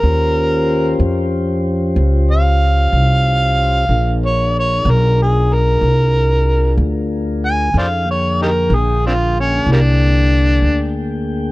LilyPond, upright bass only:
\new Staff \with { instrumentName = "Upright bass" } { \clef bass \time 12/8 \key bes \mixolydian \tempo 4. = 62 ees,4. f,4. des,4. c,4. | bes,,4. ces,4. c,4. d,4. | f,4. bes,,4. c,4. d,4. | }